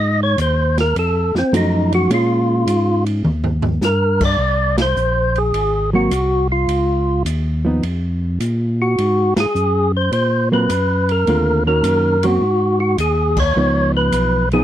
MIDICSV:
0, 0, Header, 1, 5, 480
1, 0, Start_track
1, 0, Tempo, 572519
1, 1762, Time_signature, 4, 2, 24, 8
1, 12273, End_track
2, 0, Start_track
2, 0, Title_t, "Tonewheel organ"
2, 0, Program_c, 0, 16
2, 0, Note_on_c, 0, 75, 88
2, 172, Note_off_c, 0, 75, 0
2, 193, Note_on_c, 0, 73, 107
2, 330, Note_off_c, 0, 73, 0
2, 347, Note_on_c, 0, 72, 80
2, 651, Note_off_c, 0, 72, 0
2, 674, Note_on_c, 0, 70, 99
2, 811, Note_off_c, 0, 70, 0
2, 829, Note_on_c, 0, 69, 81
2, 1132, Note_off_c, 0, 69, 0
2, 1160, Note_on_c, 0, 60, 69
2, 1294, Note_off_c, 0, 60, 0
2, 1313, Note_on_c, 0, 63, 83
2, 1615, Note_off_c, 0, 63, 0
2, 1631, Note_on_c, 0, 66, 111
2, 1769, Note_off_c, 0, 66, 0
2, 1795, Note_on_c, 0, 65, 86
2, 2552, Note_off_c, 0, 65, 0
2, 3224, Note_on_c, 0, 70, 94
2, 3550, Note_off_c, 0, 70, 0
2, 3564, Note_on_c, 0, 74, 107
2, 3995, Note_off_c, 0, 74, 0
2, 4038, Note_on_c, 0, 72, 97
2, 4511, Note_on_c, 0, 68, 86
2, 4519, Note_off_c, 0, 72, 0
2, 4949, Note_off_c, 0, 68, 0
2, 4991, Note_on_c, 0, 66, 82
2, 5429, Note_off_c, 0, 66, 0
2, 5465, Note_on_c, 0, 65, 82
2, 6060, Note_off_c, 0, 65, 0
2, 7391, Note_on_c, 0, 66, 85
2, 7830, Note_off_c, 0, 66, 0
2, 7882, Note_on_c, 0, 68, 104
2, 8316, Note_off_c, 0, 68, 0
2, 8355, Note_on_c, 0, 72, 92
2, 8483, Note_off_c, 0, 72, 0
2, 8493, Note_on_c, 0, 72, 91
2, 8794, Note_off_c, 0, 72, 0
2, 8833, Note_on_c, 0, 71, 92
2, 9318, Note_off_c, 0, 71, 0
2, 9319, Note_on_c, 0, 70, 88
2, 9754, Note_off_c, 0, 70, 0
2, 9787, Note_on_c, 0, 70, 97
2, 10260, Note_on_c, 0, 66, 89
2, 10275, Note_off_c, 0, 70, 0
2, 10723, Note_off_c, 0, 66, 0
2, 10733, Note_on_c, 0, 66, 82
2, 10876, Note_off_c, 0, 66, 0
2, 10900, Note_on_c, 0, 68, 86
2, 11229, Note_off_c, 0, 68, 0
2, 11232, Note_on_c, 0, 73, 104
2, 11669, Note_off_c, 0, 73, 0
2, 11710, Note_on_c, 0, 71, 101
2, 12147, Note_off_c, 0, 71, 0
2, 12185, Note_on_c, 0, 68, 93
2, 12273, Note_off_c, 0, 68, 0
2, 12273, End_track
3, 0, Start_track
3, 0, Title_t, "Hollow-body jazz guitar"
3, 0, Program_c, 1, 26
3, 1283, Note_on_c, 1, 53, 58
3, 1287, Note_on_c, 1, 57, 61
3, 1291, Note_on_c, 1, 63, 58
3, 1291, Note_on_c, 1, 66, 61
3, 1761, Note_off_c, 1, 57, 0
3, 1763, Note_off_c, 1, 53, 0
3, 1764, Note_on_c, 1, 56, 59
3, 1766, Note_off_c, 1, 63, 0
3, 1767, Note_off_c, 1, 66, 0
3, 1770, Note_on_c, 1, 61, 62
3, 1777, Note_on_c, 1, 65, 58
3, 2724, Note_off_c, 1, 56, 0
3, 2727, Note_off_c, 1, 61, 0
3, 2730, Note_off_c, 1, 65, 0
3, 4975, Note_on_c, 1, 54, 65
3, 4981, Note_on_c, 1, 58, 60
3, 4989, Note_on_c, 1, 60, 66
3, 5112, Note_off_c, 1, 54, 0
3, 5115, Note_off_c, 1, 58, 0
3, 5119, Note_off_c, 1, 60, 0
3, 6411, Note_on_c, 1, 53, 59
3, 6421, Note_on_c, 1, 59, 58
3, 6424, Note_on_c, 1, 63, 64
3, 6551, Note_off_c, 1, 53, 0
3, 6556, Note_off_c, 1, 59, 0
3, 6557, Note_off_c, 1, 63, 0
3, 8820, Note_on_c, 1, 54, 61
3, 8822, Note_on_c, 1, 58, 71
3, 8827, Note_on_c, 1, 60, 73
3, 8956, Note_off_c, 1, 54, 0
3, 8957, Note_off_c, 1, 58, 0
3, 8959, Note_off_c, 1, 60, 0
3, 9456, Note_on_c, 1, 50, 46
3, 9459, Note_on_c, 1, 57, 55
3, 9468, Note_on_c, 1, 60, 54
3, 9468, Note_on_c, 1, 65, 56
3, 9745, Note_off_c, 1, 50, 0
3, 9747, Note_off_c, 1, 57, 0
3, 9751, Note_off_c, 1, 60, 0
3, 9752, Note_off_c, 1, 65, 0
3, 9781, Note_on_c, 1, 51, 55
3, 9787, Note_on_c, 1, 61, 56
3, 9788, Note_on_c, 1, 58, 47
3, 9793, Note_on_c, 1, 66, 59
3, 10192, Note_off_c, 1, 51, 0
3, 10195, Note_off_c, 1, 61, 0
3, 10196, Note_off_c, 1, 58, 0
3, 10198, Note_off_c, 1, 66, 0
3, 10263, Note_on_c, 1, 54, 59
3, 10274, Note_on_c, 1, 58, 56
3, 10274, Note_on_c, 1, 60, 67
3, 10397, Note_off_c, 1, 54, 0
3, 10402, Note_off_c, 1, 58, 0
3, 10402, Note_off_c, 1, 60, 0
3, 11375, Note_on_c, 1, 53, 63
3, 11379, Note_on_c, 1, 59, 59
3, 11389, Note_on_c, 1, 63, 61
3, 12111, Note_off_c, 1, 53, 0
3, 12113, Note_off_c, 1, 59, 0
3, 12118, Note_off_c, 1, 63, 0
3, 12185, Note_on_c, 1, 53, 66
3, 12185, Note_on_c, 1, 59, 80
3, 12192, Note_on_c, 1, 63, 79
3, 12273, Note_off_c, 1, 53, 0
3, 12273, Note_off_c, 1, 59, 0
3, 12273, Note_off_c, 1, 63, 0
3, 12273, End_track
4, 0, Start_track
4, 0, Title_t, "Tonewheel organ"
4, 0, Program_c, 2, 16
4, 0, Note_on_c, 2, 44, 84
4, 305, Note_off_c, 2, 44, 0
4, 318, Note_on_c, 2, 39, 104
4, 786, Note_off_c, 2, 39, 0
4, 802, Note_on_c, 2, 41, 82
4, 1106, Note_off_c, 2, 41, 0
4, 1128, Note_on_c, 2, 41, 40
4, 1205, Note_off_c, 2, 41, 0
4, 1276, Note_on_c, 2, 42, 97
4, 1745, Note_off_c, 2, 42, 0
4, 1759, Note_on_c, 2, 46, 88
4, 2226, Note_off_c, 2, 46, 0
4, 2236, Note_on_c, 2, 44, 99
4, 2705, Note_off_c, 2, 44, 0
4, 2720, Note_on_c, 2, 39, 82
4, 3188, Note_off_c, 2, 39, 0
4, 3198, Note_on_c, 2, 43, 87
4, 3667, Note_off_c, 2, 43, 0
4, 3676, Note_on_c, 2, 36, 85
4, 4146, Note_off_c, 2, 36, 0
4, 4161, Note_on_c, 2, 34, 88
4, 4629, Note_off_c, 2, 34, 0
4, 4632, Note_on_c, 2, 32, 73
4, 5104, Note_off_c, 2, 32, 0
4, 5117, Note_on_c, 2, 36, 78
4, 5587, Note_off_c, 2, 36, 0
4, 5593, Note_on_c, 2, 37, 81
4, 6065, Note_off_c, 2, 37, 0
4, 6079, Note_on_c, 2, 39, 95
4, 6549, Note_off_c, 2, 39, 0
4, 6562, Note_on_c, 2, 41, 74
4, 7031, Note_off_c, 2, 41, 0
4, 7044, Note_on_c, 2, 46, 88
4, 7512, Note_off_c, 2, 46, 0
4, 7531, Note_on_c, 2, 44, 86
4, 7833, Note_off_c, 2, 44, 0
4, 7858, Note_on_c, 2, 44, 44
4, 7934, Note_off_c, 2, 44, 0
4, 8004, Note_on_c, 2, 42, 89
4, 8472, Note_off_c, 2, 42, 0
4, 8485, Note_on_c, 2, 46, 76
4, 8952, Note_off_c, 2, 46, 0
4, 8967, Note_on_c, 2, 42, 84
4, 9433, Note_off_c, 2, 42, 0
4, 9448, Note_on_c, 2, 39, 79
4, 9913, Note_off_c, 2, 39, 0
4, 9921, Note_on_c, 2, 42, 91
4, 10389, Note_off_c, 2, 42, 0
4, 10402, Note_on_c, 2, 44, 69
4, 10870, Note_off_c, 2, 44, 0
4, 10879, Note_on_c, 2, 39, 85
4, 11348, Note_off_c, 2, 39, 0
4, 11363, Note_on_c, 2, 37, 75
4, 11830, Note_off_c, 2, 37, 0
4, 11837, Note_on_c, 2, 35, 94
4, 12273, Note_off_c, 2, 35, 0
4, 12273, End_track
5, 0, Start_track
5, 0, Title_t, "Drums"
5, 319, Note_on_c, 9, 44, 54
5, 319, Note_on_c, 9, 51, 60
5, 403, Note_off_c, 9, 44, 0
5, 403, Note_off_c, 9, 51, 0
5, 651, Note_on_c, 9, 38, 42
5, 653, Note_on_c, 9, 51, 52
5, 735, Note_off_c, 9, 38, 0
5, 737, Note_off_c, 9, 51, 0
5, 806, Note_on_c, 9, 51, 66
5, 889, Note_off_c, 9, 51, 0
5, 1133, Note_on_c, 9, 38, 48
5, 1217, Note_off_c, 9, 38, 0
5, 1289, Note_on_c, 9, 44, 53
5, 1289, Note_on_c, 9, 51, 73
5, 1373, Note_off_c, 9, 44, 0
5, 1373, Note_off_c, 9, 51, 0
5, 1614, Note_on_c, 9, 51, 52
5, 1698, Note_off_c, 9, 51, 0
5, 1766, Note_on_c, 9, 51, 74
5, 1849, Note_off_c, 9, 51, 0
5, 2242, Note_on_c, 9, 44, 53
5, 2242, Note_on_c, 9, 51, 76
5, 2326, Note_off_c, 9, 44, 0
5, 2326, Note_off_c, 9, 51, 0
5, 2568, Note_on_c, 9, 51, 51
5, 2652, Note_off_c, 9, 51, 0
5, 2720, Note_on_c, 9, 47, 52
5, 2804, Note_off_c, 9, 47, 0
5, 2882, Note_on_c, 9, 43, 63
5, 2965, Note_off_c, 9, 43, 0
5, 3038, Note_on_c, 9, 43, 96
5, 3122, Note_off_c, 9, 43, 0
5, 3199, Note_on_c, 9, 38, 56
5, 3201, Note_on_c, 9, 44, 66
5, 3283, Note_off_c, 9, 38, 0
5, 3285, Note_off_c, 9, 44, 0
5, 3526, Note_on_c, 9, 49, 80
5, 3527, Note_on_c, 9, 36, 80
5, 3610, Note_off_c, 9, 49, 0
5, 3611, Note_off_c, 9, 36, 0
5, 4005, Note_on_c, 9, 38, 85
5, 4007, Note_on_c, 9, 51, 71
5, 4089, Note_off_c, 9, 38, 0
5, 4090, Note_off_c, 9, 51, 0
5, 4163, Note_on_c, 9, 44, 62
5, 4247, Note_off_c, 9, 44, 0
5, 4489, Note_on_c, 9, 51, 42
5, 4573, Note_off_c, 9, 51, 0
5, 4644, Note_on_c, 9, 51, 60
5, 4728, Note_off_c, 9, 51, 0
5, 5125, Note_on_c, 9, 44, 63
5, 5125, Note_on_c, 9, 51, 67
5, 5208, Note_off_c, 9, 44, 0
5, 5208, Note_off_c, 9, 51, 0
5, 5606, Note_on_c, 9, 51, 65
5, 5690, Note_off_c, 9, 51, 0
5, 6086, Note_on_c, 9, 44, 57
5, 6086, Note_on_c, 9, 51, 68
5, 6169, Note_off_c, 9, 44, 0
5, 6169, Note_off_c, 9, 51, 0
5, 6566, Note_on_c, 9, 51, 56
5, 6650, Note_off_c, 9, 51, 0
5, 7046, Note_on_c, 9, 44, 54
5, 7046, Note_on_c, 9, 51, 56
5, 7130, Note_off_c, 9, 44, 0
5, 7130, Note_off_c, 9, 51, 0
5, 7532, Note_on_c, 9, 51, 60
5, 7616, Note_off_c, 9, 51, 0
5, 7851, Note_on_c, 9, 38, 80
5, 7853, Note_on_c, 9, 51, 64
5, 7935, Note_off_c, 9, 38, 0
5, 7937, Note_off_c, 9, 51, 0
5, 8010, Note_on_c, 9, 44, 53
5, 8094, Note_off_c, 9, 44, 0
5, 8488, Note_on_c, 9, 51, 58
5, 8572, Note_off_c, 9, 51, 0
5, 8967, Note_on_c, 9, 44, 56
5, 8967, Note_on_c, 9, 51, 69
5, 9051, Note_off_c, 9, 44, 0
5, 9051, Note_off_c, 9, 51, 0
5, 9296, Note_on_c, 9, 51, 45
5, 9380, Note_off_c, 9, 51, 0
5, 9450, Note_on_c, 9, 51, 59
5, 9534, Note_off_c, 9, 51, 0
5, 9924, Note_on_c, 9, 44, 57
5, 9924, Note_on_c, 9, 51, 67
5, 10008, Note_off_c, 9, 44, 0
5, 10008, Note_off_c, 9, 51, 0
5, 10253, Note_on_c, 9, 51, 66
5, 10337, Note_off_c, 9, 51, 0
5, 10885, Note_on_c, 9, 44, 61
5, 10885, Note_on_c, 9, 51, 67
5, 10968, Note_off_c, 9, 44, 0
5, 10968, Note_off_c, 9, 51, 0
5, 11206, Note_on_c, 9, 49, 79
5, 11208, Note_on_c, 9, 36, 80
5, 11290, Note_off_c, 9, 49, 0
5, 11292, Note_off_c, 9, 36, 0
5, 11841, Note_on_c, 9, 44, 58
5, 11841, Note_on_c, 9, 51, 61
5, 11924, Note_off_c, 9, 44, 0
5, 11924, Note_off_c, 9, 51, 0
5, 12169, Note_on_c, 9, 51, 43
5, 12253, Note_off_c, 9, 51, 0
5, 12273, End_track
0, 0, End_of_file